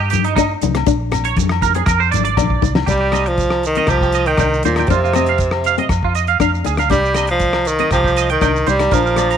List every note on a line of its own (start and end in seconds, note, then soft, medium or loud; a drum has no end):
0.00 0.54 G2 medium
0.10 0.24 G4 medium
0.10 closed hi-hat medium
0.10 muted conga soft
0.10 high conga medium
0.10 shekere medium
0.24 0.34 D#4 medium
0.24 closed hi-hat soft
0.36 0.54 D4 medium
0.36 0.51 D#4 medium
0.36 kick medium
0.36 cross-stick medium
0.36 closed hi-hat medium
0.36 low agogo medium
0.36 shekere medium
0.62 0.85 C2 loud
0.62 0.71 D#4 medium
0.62 closed hi-hat medium
0.62 muted conga soft
0.62 high conga medium
0.62 shekere loud
0.75 0.83 C4 medium
0.75 cross-stick medium
0.75 closed hi-hat medium
0.75 low agogo medium
0.86 1.32 A#1 loud
0.86 1.03 D4 loud
0.86 kick loud
0.86 closed hi-hat medium
0.86 muted conga soft
0.86 shekere medium
1.12 1.28 C4 medium
1.12 cross-stick medium
1.12 closed hi-hat medium
1.12 low agogo medium
1.12 shekere loud
1.25 1.37 C#5 medium
1.25 closed hi-hat medium
1.36 1.82 F2 loud
1.36 muted clean electric guitar stroke loud
1.36 kick medium
1.36 closed hi-hat medium
1.36 high conga medium
1.36 shekere medium
1.49 cross-stick medium
1.49 low agogo medium
1.62 1.75 A#4 medium
1.62 kick medium
1.62 closed hi-hat soft
1.62 low conga medium
1.62 shekere loud
1.74 1.92 C4 medium
1.74 1.86 G#4 medium
1.74 closed hi-hat medium
1.86 2.10 F2 loud
1.86 2.00 A#4 medium
1.86 kick loud
1.86 cross-stick medium
1.86 closed hi-hat medium
1.86 muted conga soft
1.86 low agogo medium
1.86 shekere medium
2.00 2.11 C5 medium
2.11 2.36 G#1 medium
2.11 2.23 D5 loud
2.11 closed hi-hat medium
2.11 muted conga soft
2.11 high conga medium
2.11 shekere loud
2.25 2.72 D5 medium
2.25 closed hi-hat soft
2.37 2.60 A#1 medium
2.37 2.54 D4 medium
2.37 kick medium
2.37 high conga medium
2.37 low conga medium
2.37 low agogo medium
2.37 shekere medium
2.50 kick medium
2.62 2.85 C2 medium
2.62 2.71 D#4 medium
2.62 kick medium
2.62 muted conga soft
2.62 shekere loud
2.75 2.83 D#4 medium
2.75 snare medium
2.75 low agogo medium
2.86 3.78 C2 medium
2.86 3.29 G3 medium
2.86 2.96 G4 medium
2.86 muted steel-string acoustic guitar stroke medium
2.86 kick medium
2.86 closed hi-hat soft
2.86 shekere medium
3.01 3.09 G4 medium
3.12 3.29 C4 medium
3.12 3.22 D#5 medium
3.12 cross-stick medium
3.12 closed hi-hat soft
3.12 low agogo medium
3.12 shekere medium
3.26 3.64 F3 medium
3.26 muted clean electric guitar stroke medium
3.26 closed hi-hat soft
3.38 kick medium
3.38 closed hi-hat soft
3.38 shekere medium
3.50 cross-stick medium
3.50 low agogo medium
3.63 3.92 D#3 medium
3.63 closed hi-hat soft
3.63 shekere medium
3.75 3.93 C4 medium
3.75 3.85 D#5 medium
3.75 closed hi-hat soft
3.87 4.33 C2 medium
3.87 4.28 F3 medium
3.87 3.98 G4 medium
3.87 kick medium
3.87 cross-stick medium
3.87 closed hi-hat soft
3.87 low agogo medium
3.87 shekere medium
4.01 4.10 G4 medium
4.01 kick medium
4.01 shekere soft
4.12 4.23 D#5 medium
4.12 closed hi-hat soft
4.12 shekere medium
4.26 4.64 D#3 medium
4.26 4.35 G5 medium
4.26 closed hi-hat soft
4.37 4.61 C2 medium
4.37 4.55 D4 medium
4.37 4.49 G5 medium
4.37 kick medium
4.37 cross-stick medium
4.37 closed hi-hat soft
4.37 low agogo medium
4.37 shekere medium
4.54 shekere soft
4.63 4.87 D#2 medium
4.63 4.90 A#2 medium
4.63 4.73 D#4 medium
4.63 4.74 C5 medium
4.63 closed hi-hat soft
4.63 shekere medium
4.76 4.86 D#4 medium
4.76 4.87 G5 medium
4.76 cross-stick medium
4.76 closed hi-hat soft
4.76 low agogo medium
4.76 shekere soft
4.87 5.79 F2 medium
4.87 5.90 C3 medium
4.87 5.06 D4 medium
4.87 4.99 F4 medium
4.87 kick medium
4.87 closed hi-hat soft
4.87 shekere medium
5.04 5.12 F4 medium
5.04 shekere soft
5.13 5.31 C4 medium
5.13 5.24 D#5 medium
5.13 cross-stick medium
5.13 closed hi-hat soft
5.13 low agogo medium
5.13 shekere medium
5.26 5.37 F5 medium
5.26 closed hi-hat soft
5.38 kick medium
5.38 closed hi-hat soft
5.38 shekere medium
5.51 cross-stick medium
5.51 low agogo medium
5.64 5.75 F5 medium
5.64 closed hi-hat soft
5.64 shekere medium
5.78 5.94 C4 medium
5.78 5.87 D#5 medium
5.78 closed hi-hat soft
5.89 6.35 F2 medium
5.89 muted clean electric guitar stroke medium
5.89 kick medium
5.89 cross-stick medium
5.89 closed hi-hat soft
5.89 low agogo medium
5.89 shekere medium
6.03 6.12 F4 medium
6.03 kick medium
6.15 6.24 D#5 medium
6.15 closed hi-hat soft
6.15 shekere medium
6.27 6.36 F5 medium
6.27 closed hi-hat soft
6.40 6.63 F2 medium
6.40 6.56 D4 medium
6.40 6.50 F5 medium
6.40 kick medium
6.40 cross-stick medium
6.40 closed hi-hat soft
6.40 low agogo medium
6.40 shekere medium
6.55 shekere soft
6.64 6.89 D2 medium
6.64 6.73 D#4 medium
6.64 6.75 G#4 medium
6.64 closed hi-hat soft
6.64 shekere medium
6.77 6.87 F5 medium
6.77 muted steel-string acoustic guitar stroke medium
6.77 cross-stick medium
6.77 closed hi-hat soft
6.77 low agogo medium
6.77 shekere soft
6.90 7.81 C2 medium
6.90 7.27 G3 loud
6.90 7.07 D4 medium
6.90 7.00 G4 medium
6.90 kick medium
6.90 closed hi-hat soft
6.90 shekere medium
7.04 7.12 G4 medium
7.04 shekere soft
7.14 7.31 C4 medium
7.14 7.25 D#5 medium
7.14 cross-stick medium
7.14 closed hi-hat soft
7.14 low agogo medium
7.14 shekere medium
7.27 7.69 F3 medium
7.27 muted clean electric guitar stroke medium
7.27 closed hi-hat soft
7.40 kick medium
7.40 closed hi-hat soft
7.40 shekere medium
7.53 cross-stick medium
7.53 low agogo medium
7.65 7.92 D#3 medium
7.65 closed hi-hat soft
7.65 shekere medium
7.79 7.96 C4 medium
7.79 7.88 D#5 medium
7.79 closed hi-hat soft
7.91 8.37 C2 medium
7.91 8.28 F3 medium
7.91 8.01 G4 medium
7.91 kick medium
7.91 cross-stick medium
7.91 closed hi-hat soft
7.91 low agogo medium
7.91 shekere medium
8.04 8.13 G4 medium
8.04 kick medium
8.04 shekere soft
8.16 8.26 D#5 medium
8.16 closed hi-hat soft
8.16 shekere medium
8.29 8.70 D#3 medium
8.29 8.38 G5 medium
8.29 closed hi-hat soft
8.41 8.65 C2 medium
8.41 8.58 D4 medium
8.41 8.51 G5 medium
8.41 kick medium
8.41 cross-stick medium
8.41 closed hi-hat soft
8.41 low agogo medium
8.41 shekere medium
8.56 shekere soft
8.66 8.90 C2 medium
8.66 8.95 G3 medium
8.66 8.76 D#4 medium
8.66 8.76 C5 medium
8.66 closed hi-hat soft
8.66 shekere medium
8.79 8.88 D#4 medium
8.79 cross-stick medium
8.79 closed hi-hat soft
8.79 low agogo medium
8.79 shekere soft
8.91 9.37 A#1 medium
8.91 9.37 F3 medium
8.91 9.08 D4 medium
8.91 9.01 A#4 medium
8.91 kick medium
8.91 closed hi-hat soft
8.91 shekere medium
9.06 9.14 A#4 medium
9.06 shekere soft
9.16 9.34 C4 medium
9.16 9.27 D5 medium
9.16 cross-stick medium
9.16 closed hi-hat soft
9.16 low agogo medium
9.16 shekere medium
9.30 9.37 A#5 medium
9.30 closed hi-hat soft
9.30 shekere soft